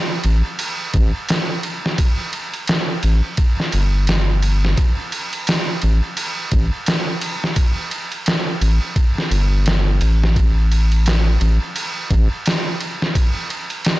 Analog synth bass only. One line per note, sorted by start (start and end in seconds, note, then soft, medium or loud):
0.25 0.42 A1 medium
0.94 1.12 A1 loud
3.04 3.21 A1 loud
3.74 4.75 G1 medium
5.83 6.01 A1 loud
6.52 6.70 A1 loud
8.61 8.79 A1 medium
9.31 10.01 G1 medium
10.01 11.38 A1 medium
11.41 11.59 A1 loud
12.11 12.28 A1 loud